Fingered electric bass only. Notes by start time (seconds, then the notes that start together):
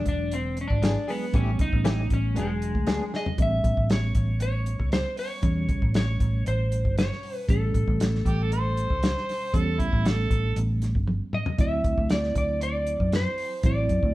0.06 E1
0.70 G#1
1.34 A1
1.59 C#2
1.73 A1
2.11 A1
2.37 E1
2.75 D2
3.38 A1
3.64 A1
3.77 A1
4.15 A1
4.79 C#2
5.43 E2
5.69 C#2
5.82 A1
6.21 A1
6.47 A1
6.85 G1
7.49 A1
7.75 A1
7.88 A1
8.25 A1
8.90 C#2
9.54 E2
9.79 C#2
9.93 A1
10.30 A1
10.56 A1
10.95 G1
11.59 D2
11.84 D2
11.98 D2
12.35 D2
13.00 F#2
13.64 A1
13.89 F#2
14.03 D2